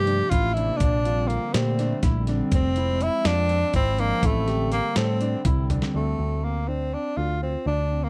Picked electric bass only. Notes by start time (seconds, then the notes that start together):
Already playing: G2
0.32 A1
0.81 A#1
1.54 A#2
2.03 A#1
2.52 F1
3.25 F2
3.74 G#1
4.23 A1
4.97 A2
5.46 C2
5.94 D2
6.19 D2
7.17 D2
7.66 D2